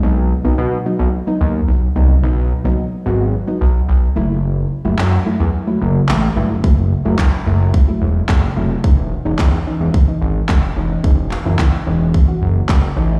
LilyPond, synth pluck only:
\new Staff \with { instrumentName = "Synth pluck" } { \time 4/4 \key cis \minor \tempo 4 = 109 <fis b dis'>8 r16 <fis b dis'>8 r16 <fis b dis'>8 r16 <fis b dis'>8. r8 <fis b dis'>16 r16 | <fis b dis'>8 r16 <fis b dis'>8 r16 <fis b fis'>8 r16 <fis b dis'>8. r8 <fis a e'>8~ | <fis a e'>8 r16 <fis a e'>8 r16 <fis a e'>8 r16 <fis a e'>8. r8 <fis a e'>16 r16 | <fis a e'>8 r16 <fis a e'>8 r16 <fis a e'>8 r16 <fis a e'>8. r8 <fis a e'>16 r16 |
<e cis' dis'>8 r16 <e cis' dis'>8 r16 <e cis' dis'>8 r16 <e cis' dis'>8. r8 <e cis' dis'>16 r16 | <e cis' dis'>8 r16 <e cis' e'>8 r16 <e cis' dis'>8 r16 <e cis' fis'>8. r8 <e cis' dis'>16 r16 | }